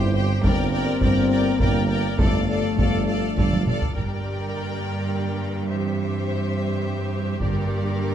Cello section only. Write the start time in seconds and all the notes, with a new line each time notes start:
Already playing: G2
0.45 G2
1.03 G2
1.61 G2
2.20 G2
2.79 G2
3.39 G2
3.97 G2
7.41 G2